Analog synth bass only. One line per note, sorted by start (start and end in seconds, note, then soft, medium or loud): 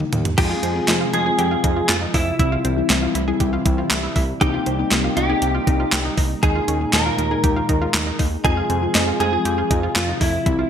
0.13 0.30 D#2 medium
0.38 0.55 F2 loud
0.63 0.81 F2 loud
0.88 1.06 F2 loud
1.13 1.31 F2 loud
1.39 1.56 F2 loud
1.64 1.82 F2 loud
1.89 2.07 F2 loud
2.14 2.32 F2 medium
2.39 2.57 C2 loud
2.65 2.82 C2 medium
2.90 3.08 C2 loud
3.15 3.33 C2 medium
3.40 3.58 C2 loud
3.66 3.83 C2 loud
3.91 4.08 C2 loud
4.16 4.34 C2 loud
4.41 4.59 C2 loud
4.66 4.84 C2 loud
4.92 5.09 C2 loud
5.17 5.34 C2 loud
5.42 5.60 C2 loud
5.67 5.85 C2 loud
5.92 6.10 C2 loud
6.18 6.35 C2 loud
6.43 6.60 D#2 loud
6.68 6.86 D#2 loud
6.93 7.11 D#2 loud
7.18 7.36 D#2 loud
7.44 7.61 D#2 loud
7.69 7.87 D#2 loud
7.94 8.12 D#2 loud
8.19 8.37 D#2 loud
8.45 8.62 F2 loud
8.70 8.87 F2 loud
8.95 9.13 F2 loud
9.20 9.38 F2 loud
9.45 9.63 F2 loud
9.71 9.88 F2 loud
9.96 10.13 F2 loud
10.21 10.39 F2 medium
10.46 10.64 C2 loud